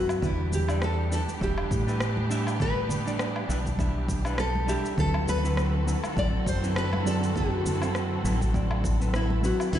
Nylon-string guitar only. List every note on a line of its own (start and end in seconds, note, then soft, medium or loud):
0.00 0.24 F#4 medium
0.25 0.54 E4 medium
0.55 0.84 G4 medium
0.84 1.13 A4 medium
1.14 1.22 A4 medium
1.43 2.65 G4 medium
2.62 3.16 B4 loud
4.40 4.70 A4 medium
4.69 4.99 G4 medium
5.00 5.29 A4 medium
5.29 6.18 B4 loud
6.19 6.48 D5 loud
6.49 6.78 C5 loud
6.78 7.07 B4 loud
7.08 7.15 A4 medium
7.37 8.51 F#4 medium
9.16 9.45 E4 medium
9.45 9.75 F#4 medium
9.75 9.79 E4 medium